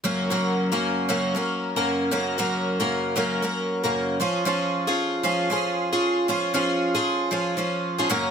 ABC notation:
X:1
M:4/4
L:1/16
Q:"Swing 16ths" 1/4=116
K:F#
V:1 name="Twelve-string acoustic guitar"
[F,,C,F,A,CA]2 [F,,C,F,A,CA]3 [F,,C,F,A,CA]3 [F,,C,F,A,CA]2 [F,A,CA]3 [F,,C,F,A,CA]3 | [F,,C,F,A,CA]2 [F,,C,F,A,CA]3 [F,,C,F,A,CA]3 [F,,C,F,A,CA]2 [F,A,CA]3 [F,,C,F,A,CA]3 | [E,CEG]2 [E,CEG]3 [E,CEG]3 [E,CEG]2 [E,CEG]3 [E,CEG]3 | [E,CEG]2 [E,CEG]3 [E,CEG]3 [E,CEG]2 [E,CEG]3 [E,CEG] [F,,C,F,A,CA]2 |]